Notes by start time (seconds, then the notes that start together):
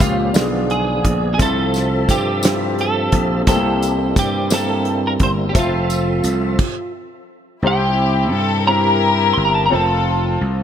Already playing: A#2 F3 A#3 C#4 F4 G4
0.00 C#2 F4, kick, closed hi-hat, tambourine
0.33 B1 D3 F3 B3 D4 F4 G4 G#4, snare, closed hi-hat, tambourine
0.42 G#4
0.70 G#4, closed hi-hat
1.04 A#1, kick, closed hi-hat
1.34 G#4 A4 E5
1.38 C2 C3 F3 C4 E4 F4 A4, kick, closed hi-hat, tambourine
1.74 snare, closed hi-hat, tambourine
2.09 G2 G4, kick, closed hi-hat, tambourine
2.43 C4 E4 F4 G4, snare, closed hi-hat, tambourine
2.79 A4, closed hi-hat
3.12 A#1, kick, closed hi-hat
3.47 C2 C3 G3 A#3 C4 E4 G4 A4, kick, closed hi-hat, tambourine
3.55 A#3
3.83 closed hi-hat, tambourine
4.16 G2 G4, kick, closed hi-hat, tambourine
4.50 A#3 C4 E4 G4 A4, snare, closed hi-hat, tambourine
4.85 closed hi-hat
5.07 A#4
5.20 G1 C5, kick, closed hi-hat
5.49 G4
5.53 F1 F3 C4 F4 A4 E5, kick, closed hi-hat, tambourine
5.59 F4
5.90 closed hi-hat, tambourine
6.24 C2, closed hi-hat, tambourine
6.59 kick, crash
7.62 C2 C3 C4 D#4 E4 G4 C5
7.67 E4 G5
8.32 G2 A4
8.67 C4 E4 G4 A#4 A#5
9.34 G1 C6
9.45 A#5
9.54 A5
9.66 A#5
9.70 F1 C4 F4 A4 C5
9.75 A5
10.41 C2